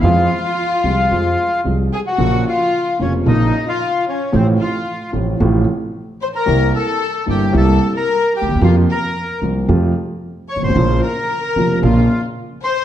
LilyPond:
<<
  \new Staff \with { instrumentName = "Bandoneon" } { \time 4/4 \key f \minor \tempo 4 = 112 <f' f''>2. r8 <aes' aes''>16 <ges' ges''>16~ | \key bes \minor <ges' ges''>8 <f' f''>4 <des' des''>8 <ees' ees''>8. <f' f''>8. <des' des''>8 | <c' c''>8 <f' f''>4 r2 <c'' c'''>16 <bes' bes''>16~ | <bes' bes''>8 <a' a''>4 <g' g''>8 <a' a''>8. <bes' bes''>8. <g' g''>8 |
<f' f''>8 <bes' bes''>4 r2 <des'' des'''>16 <c'' c'''>16~ | <c'' c'''>8 <bes' bes''>4. <f' f''>8. r8. <c'' c'''>8 | }
  \new Staff \with { instrumentName = "Violin section" } { \time 4/4 \key f \minor f'2. r8 aes'16 ges'16~ | \key bes \minor ges'8 f'4 des'8 ees'8. f'8. des'8 | c'8 f'4 r2 c''16 bes'16~ | bes'8 a'4 g'8 a'8. bes'8. g'8 |
f'8 bes'4 r2 des''16 c''16~ | c''8 bes'4. f'8. r8. c''8 | }
  \new Staff \with { instrumentName = "Grand piano" } { \clef bass \time 4/4 \key f \minor <f, f aes c' aes'>8 r4 <c, c f aes c' aes'>8 <f, f aes c' aes'>8 r8 <c, c f aes c' aes'>8 r8 | \key bes \minor <bes,, bes, des f bes f'>8 r4 <f,, f, des f bes f'>8 <bes,, bes, des f bes f'>8 r4. | <a,, a, c f a f'>8 r4 <a,, a, c f a f'>8 <a,, a, c f a f'>8 r4. | <c, c g bes e'>8 r4 <g,, g, c g bes e'>8 <c, c g bes e'>8 r4 r32 d,32 ees,32 e,32 |
<f, c f bes f'>8 r4 <c, c f bes f'>8 <f, c f a f'>8 r4 r32 g,,32 aes,,32 a,,32 | <bes,, bes, des f bes f'>8 r4 <f,, f, des f bes f'>8 <bes,, bes, des f bes f'>8 r4. | }
  \new Staff \with { instrumentName = "Upright bass" } { \clef bass \time 4/4 \key f \minor f,16. r4 r32 c,16. r32 f,16. r8 r32 c,16. r8 r32 | \key bes \minor bes,,16. r4 r32 f,,16. r32 bes,,16. r4. r32 | a,,16. r4 r32 a,,16. r32 a,,16. r4. r32 | c,16. r4 r32 g,,16. r32 c,16. r4 r16 d,32 ees,32 e,32 |
f,16. r4 r32 c,16. r32 f,16. r4 r16 g,,32 aes,,32 a,,32 | bes,,16. r4 r32 f,,16. r32 bes,,16. r4. r32 | }
>>